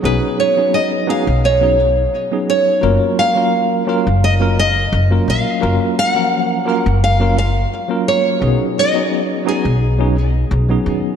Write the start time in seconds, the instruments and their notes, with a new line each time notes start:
0.02 upright bass B1, tine electric piano F#3 B3 C#4 D#4 G#4, nylon-string guitar B4
0.40 nylon-string guitar C#5
0.57 tine electric piano F#3 B3 C#4 D#4 G#4
0.74 nylon-string guitar D#5
1.07 tine electric piano F#3 B3 C#4 D#4 G#4, nylon-string guitar F5
1.27 upright bass B1
1.45 nylon-string guitar C#5
1.61 tine electric piano F#3 B3 C#4 D#4 G#4
2.31 tine electric piano F#3 B3 C#4 D#4 G#4
2.50 nylon-string guitar C#5
2.81 upright bass F#1, tine electric piano F#3 A#3 C#4 F4 A#4
3.19 nylon-string guitar F5
3.35 tine electric piano F#3 A#3 C#4 F4 A#4
3.87 tine electric piano F#3 A#3 C#4 F4 A#4
4.07 upright bass F#1
4.24 nylon-string guitar D#5
4.40 tine electric piano F#3 A#3 C#4 F4 A#4
4.59 nylon-string guitar D#5
4.92 upright bass F#1
5.10 tine electric piano F#3 A#3 C#4 F4 A#4
5.28 upright bass A#1, nylon-string guitar F5
5.61 upright bass F#1, tine electric piano F#3 A#3 C#4 F4 A#4
5.99 nylon-string guitar F5
6.10 nylon-string guitar F#5
6.14 tine electric piano F3 F#3 A#3 C#4 A#4
6.65 tine electric piano F#3 A#3 C#4 F4 A#4
6.86 upright bass F#1
7.04 nylon-string guitar F5
7.20 tine electric piano F#3 A#3 C#4 F4 A#4
7.38 nylon-string guitar F5
7.88 tine electric piano F#3 A#3 C#4 F4 A#4
8.08 nylon-string guitar C#5
8.40 upright bass B1, tine electric piano F#3 B3 C#4 D#4 G#4
8.79 nylon-string guitar D#5
8.94 tine electric piano F#3 B3 C#4 D#4 G#4
9.45 tine electric piano F#3 B3 C#4 D#4 G#4, nylon-string guitar G#4
9.65 upright bass B1
9.99 tine electric piano F#3 B3 C#4 D#4 G#4
10.51 upright bass B1
10.69 tine electric piano F#3 B3 C#4 D#4 G#4
10.86 upright bass D#2